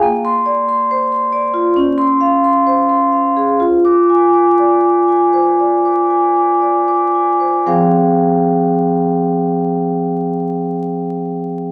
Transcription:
\new Staff \with { instrumentName = "Vibraphone" } { \time 4/4 \key f \dorian \tempo 4 = 59 << { r16 c'''8 r4. c'''8 r4 r16 | r16 d'''8 r2. r16 | <f c' aes' c'' f'' g''>1 | } \\ { bes8 d''16 c'''16 c''16 c'''16 d''16 f'16 des'8 f''16 c'''16 c''16 c'''16 f''16 aes'16 | f'8 aes''16 d'''16 d''16 d'''16 aes''16 c''16 d''16 d'''16 aes''16 d'''16 d''16 d'''16 aes''16 c''16 | r1 | } >> }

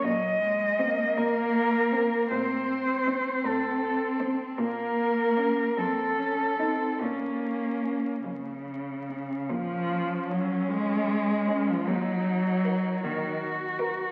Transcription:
<<
  \new Staff \with { instrumentName = "Cello" } { \time 6/8 \key bes \minor \tempo 4. = 51 ees''4. bes'4. | c''4. a'4 r8 | bes'4. a'4. | des'4. r4. |
des'2. | ees'4. ges'4. | }
  \new Staff \with { instrumentName = "Cello" } { \time 6/8 \key bes \minor r4 c'8 r4 c'8 | r4 c'8 r4 c'8 | r4 des'8 r4 ees'8 | r4 des'8 r4 des'8 |
r4 des'8 r4 des'8 | r4 bes'8 r4 bes'8 | }
  \new Staff \with { instrumentName = "Cello" } { \clef bass \time 6/8 \key bes \minor ges8 aes8 bes2 | c'4. c'4. | bes4. c'8 des'8 c'8 | bes4. des4. |
f4 ges8 aes4~ aes16 f16 | ges4. ees8 r4 | }
  \new Staff \with { instrumentName = "Cello" } { \clef bass \time 6/8 \key bes \minor bes,4. bes,4. | a,4. a,4. | bes,4. f,4. | bes,4. f,4. |
bes,4. f,4. | ees,4. bes,4. | }
>>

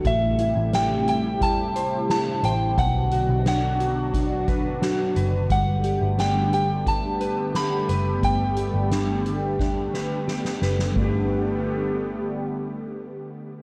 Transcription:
<<
  \new Staff \with { instrumentName = "Synth bell" } { \time 4/4 \key g \major \tempo 4 = 88 e''4 g''8 g''8 a''4 a''8 g''8 | fis''4 fis''4. r4. | fis''4 g''8 g''8 a''4 b''4 | g''2. r4 |
r1 | }
  \new Staff \with { instrumentName = "Clean electric guitar" } { \time 4/4 \key g \major a,8 e'8 g8 e'8 g8 c''8 e'8 c''8 | b,8 fis'8 d'8 fis'8 d'8 b'8 fis'8 b'8 | g8 g'8 d'8 g'8 d'8 b'8 g'8 b'8 | g8 g'8 d'8 g'8 d'8 b'8 g'8 b'8 |
<g a d' g' b'>1 | }
  \new Staff \with { instrumentName = "Analog synth pad" } { \time 4/4 \key g \major <c g a e' g'>1 | <b, d fis d' fis'>1 | <g a b g'>1~ | <g a b g'>1 |
<d g a b g'>1 | }
  \new Staff \with { instrumentName = "Picked electric bass" } { \clef bass \time 4/4 \key g \major a,,8. a,,2~ a,,8. a,,8 | b,,8. b,,2~ b,,8. fis,,8 | g,,8. g,,2~ g,,8. fis,,8 | g,,8. g,,2~ g,,8. fis,,8 |
g,,1 | }
  \new DrumStaff \with { instrumentName = "Drums" } \drummode { \time 4/4 <hh bd>8 hh8 <hh sn>8 hh8 <hh bd>8 hh8 <hh sn>8 hh8 | <hh bd>8 hh8 <hh sn>8 hh8 <hh bd>8 <hh bd>8 <hh sn>8 hh8 | <hh bd>8 hh8 <hh sn>8 hh8 <hh bd>8 hh8 <hh sn>8 hh8 | <hh bd>8 hh8 <hh sn>8 hh8 <bd sn>8 sn8 sn16 sn16 sn16 sn16 |
<bd cymr>4 r4 r4 r4 | }
>>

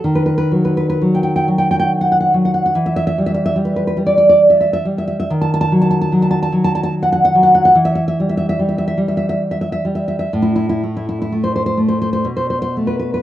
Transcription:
\new Staff \with { instrumentName = "Nylon-string guitar" } { \time 3/4 \key e \minor \tempo 4 = 70 << { r32 b'32 b'32 b'32 r32 b'32 b'32 b'32 r32 g''32 g''32 g''32 r32 g''32 g''32 g''32 r32 fis''32 fis''32 fis''32 r32 fis''32 fis''32 fis''32 | r32 e''32 e''32 e''32 r32 e''32 e''32 e''32 r32 b'32 b'32 b'32 r32 d''32 d''32 d''32 r32 e''32 e''32 e''32 r32 e''32 e''32 e''32 | r32 a''32 a''32 a''32 r32 a''32 a''32 a''32 r32 a''32 a''32 a''32 r32 a''32 a''32 a''32 r32 fis''32 fis''32 fis''32 r32 fis''32 fis''32 fis''32 | r32 e''32 e''32 e''32 r32 e''32 e''32 e''32 r32 e''32 e''32 e''32 r32 e''32 e''32 e''32 r32 e''32 e''32 e''32 r32 e''32 e''32 e''32 |
r32 e'32 e'32 e'32 r32 e'32 e'32 e'32 r32 c''32 c''32 c''32 r32 c''32 c''32 c''32 r32 c''32 c''32 c''32 r32 b'32 b'32 b'32 | } \\ { dis8 fis8 fis8 fis4 fis8 | e8 g8 g8 g4 g8 | dis8 fis8 fis8 fis4 fis8 | e8 g8 g8 g4 g8 |
a,8 a8 a8 a8 b,8 a8 | } >> }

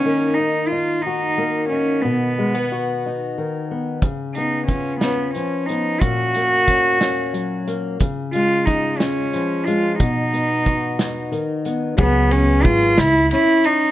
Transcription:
<<
  \new Staff \with { instrumentName = "Cello" } { \time 6/8 \key des \mixolydian \tempo 4. = 60 des'8 ees'8 f'8 ees'4 des'8 | ces'4. r4. | r8 ees'8 des'8 ces'8 des'8 ees'8 | ges'2~ ges'8 r8 |
r8 f'8 ees'8 des'4 f'8 | ees'2 r4 | ces'8 des'8 f'8 fes'8 fes'8 ees'8 | }
  \new Staff \with { instrumentName = "Steel-string acoustic guitar" } { \time 6/8 \key des \mixolydian << { <bes ees'>8 ees'8 ees'8 ges'4 ees'8 | r8 aes16 ces'16 ges'8 ees'4 ces'8 | r8 ces'8 f'8 des'4 ces'8 | r8 bes8 des'8 des'4 bes8 |
r8 aes8 f'8 des'4 aes8 | r8 ces'8 ges'8 ees'4 ces'8 | <ges ces' aes'>8 ces'4 r8 des'4 | } \\ { ees2 bes4 | ces2 ees4 | des2 f4 | bes,2 ges4 |
des2 f4 | ces2 ees4 | des4 r8 des4 r8 | } >> }
  \new Staff \with { instrumentName = "Upright bass" } { \clef bass \time 6/8 \key des \mixolydian r2. | r2. | r2. | r2. |
r2. | r2. | des,4 aes,,8 des,8 r4 | }
  \new DrumStaff \with { instrumentName = "Drums" } \drummode { \time 6/8 r4. r4. | r4. r4. | <hh bd>8 hh8 <hh bd>8 <hh sn>8 hh8 hh8 | <hh bd>8 hh8 <hh bd>8 <hh sn>8 hh8 hh8 |
<hh bd>8 hh8 <hh bd>8 <hh sn>8 hh8 hh8 | <hh bd>8 hh8 <hh bd>8 <hh sn>8 hh8 hh8 | <bd cymr>8 cymr8 <bd cymr>8 <cymr sn>8 cymr8 cymr8 | }
>>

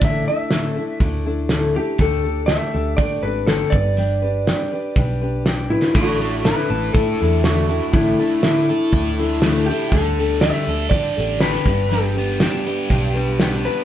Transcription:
<<
  \new Staff \with { instrumentName = "Electric slide guitar" } { \time 4/4 \key a \dorian \tempo 4 = 121 e''8 e''4. r4. g'8 | a'4 e''4 d''8 b'8 a'8 d''8~ | d''2. r8 e'8 | fis'4 b'4 a'4 fis'4 |
e'4 e'2~ e'8 g'8 | a'4 e''4 d''4 b'4 | g'4 g'2~ g'8 b'8 | }
  \new Staff \with { instrumentName = "Steel-string acoustic guitar" } { \time 4/4 \key a \dorian <a, d a d' e' a'>8 <a d' e' a'>8 <a, d a d' e' a'>8 <a d' e' a'>8 <a d' e' a'>8 <a d' e' a'>8 <a, d a d' e' a'>8 <a d' e' a'>8 | <d a d' g' a'>8 <d' g' a'>8 <d a d' g' a'>8 <d' g' a'>8 <a d' g' a'>8 <d' g' a'>8 <d a d' g' a'>8 <d' g' b'>8 | <g d' g' b'>8 <d' g' b'>8 <g d' g' b'>8 <d' g' b'>8 <g d' g' b'>8 <d' g' b'>8 <g d' g' b'>8 <d' g' b'>8 | <a, d a d' e' a'>8 <a d' e' a'>8 <a, d a d' e' a'>8 <a d' e' a'>8 <a d' e' a'>8 <a d' e' a'>8 <a, d a d' e' a'>8 <a d' e' a'>8 |
<a, d a d' e' a'>8 <a d' e' a'>8 <a, d a d' e' a'>8 <a d' e' a'>8 <a d' e' a'>8 <a d' e' a'>8 <a, d a d' e' a'>8 <a d' e' a'>8 | <d g d' g' a'>8 <d' g' a'>8 <d g d' g' a'>8 <d' g' a'>8 <g d' g' a'>8 <d' g' a'>8 <d g d' g' a'>8 <d' g' b'>8 | <g d' g' b'>8 <d' g' b'>8 <g d' g' b'>8 <d' g' b'>8 <g d' g' b'>8 <d' g' b'>8 <g d' g' b'>8 <d' g' b'>8 | }
  \new Staff \with { instrumentName = "Overdriven electric guitar" } { \time 4/4 \key a \dorian r1 | r1 | r1 | a,8 a8 e'8 a'8 e'8 d8 a8 e'8 |
a,8 a8 e'8 a'8 e'8 d8 a8 e'8 | d8 g8 d'8 a'8 d'8 d8 g8 g,8 | g,8 b8 d'8 g'8 d'8 g8 b8 d'8 | }
  \new Staff \with { instrumentName = "Picked electric bass" } { \clef bass \time 4/4 \key a \dorian a,,8 r4. d,2 | d,4. d,8 d8 gis,,4 g,,8~ | g,,4. r8 b,,2 | a,,4. a,,8 a,8 e,4. |
a,,8 r4. d,2 | d,4. d,8 d8 a,,4 g,,8~ | g,,4. r8 b,,2 | }
  \new DrumStaff \with { instrumentName = "Drums" } \drummode { \time 4/4 <hho bd>4 <hho sn>4 <hho bd>4 <hho sn>4 | <hho bd>4 <hho sn>4 <hho bd>4 <hho sn>8 bd8 | hho4 <hho sn>4 <hho bd>4 <hho sn>8 tommh16 sn16 | <cymc bd>4 <hho sn>4 <hho bd>4 <hho sn>4 |
<hho bd>4 <hho sn>4 <hho bd>4 <hho sn>4 | <hho bd>4 <hho sn>4 <hho bd>4 <hho sn>8 bd8 | hho4 <hho sn>4 <hho bd>4 <hho sn>4 | }
>>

